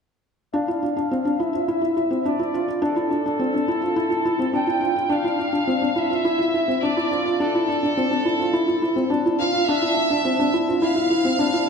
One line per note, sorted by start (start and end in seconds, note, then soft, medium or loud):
0.53 0.66 D4 medium
0.53 1.40 F5 loud
0.68 0.80 E4 medium
0.83 0.95 D4 medium
0.97 1.09 D4 medium
1.11 1.23 C4 medium
1.25 1.37 D4 medium
1.40 1.52 E4 medium
1.40 2.25 E5 loud
1.53 1.66 F4 medium
1.68 1.80 E4 medium
1.82 1.94 E4 medium
1.97 2.09 E4 medium
2.11 2.23 C4 medium
2.25 2.38 D4 medium
2.25 2.83 D5 medium
2.39 2.52 E4 medium
2.54 2.66 F4 medium
2.68 2.80 F4 medium
2.82 2.94 D4 medium
2.82 4.51 A4 medium
2.96 3.09 E4 medium
3.11 3.23 D4 medium
3.26 3.38 D4 medium
3.39 3.52 C4 medium
3.54 3.66 D4 medium
3.68 3.80 E4 medium
3.82 3.94 F4 medium
3.96 4.09 E4 medium
4.10 4.23 E4 medium
4.25 4.38 E4 medium
4.39 4.51 C4 medium
4.53 4.66 D4 medium
4.53 5.12 G5 medium
4.67 4.80 E4 medium
4.81 4.94 F4 medium
4.96 5.08 F4 medium
5.09 5.22 D4 medium
5.09 5.98 F5 loud
5.24 5.37 E4 medium
5.39 5.51 D4 medium
5.53 5.65 D4 medium
5.67 5.80 C4 medium
5.82 5.94 D4 medium
5.96 6.08 E4 medium
5.96 6.83 E5 loud
6.10 6.23 F4 medium
6.25 6.37 E4 medium
6.39 6.51 E4 medium
6.54 6.66 E4 medium
6.68 6.80 C4 medium
6.83 6.95 D4 medium
6.83 7.40 D5 medium
6.97 7.09 E4 medium
7.11 7.23 F4 medium
7.26 7.38 F4 medium
7.40 7.52 D4 medium
7.40 9.08 A4 medium
7.55 7.67 E4 medium
7.68 7.80 D4 medium
7.83 7.95 D4 medium
7.97 8.09 C4 medium
8.11 8.23 D4 medium
8.25 8.37 E4 medium
8.40 8.52 F4 medium
8.53 8.66 E4 medium
8.68 8.80 E4 medium
8.82 8.94 E4 medium
8.96 9.09 C4 medium
9.10 9.23 D4 medium
9.26 9.38 E4 medium
9.40 9.52 F4 medium
9.40 9.66 F5 loud
9.53 9.66 F4 medium
9.67 9.81 D4 loud
9.67 10.54 E5 loud
9.82 9.95 E4 medium
9.97 10.09 D4 medium
10.10 10.23 D4 medium
10.25 10.37 C4 medium
10.39 10.52 D4 medium
10.54 10.66 E4 medium
10.68 10.80 F4 medium
10.81 10.94 E4 medium
10.81 11.64 F5 medium
10.96 11.08 E4 medium
11.10 11.23 E4 medium
11.25 11.37 C4 medium
11.39 11.51 D4 medium
11.54 11.66 E4 medium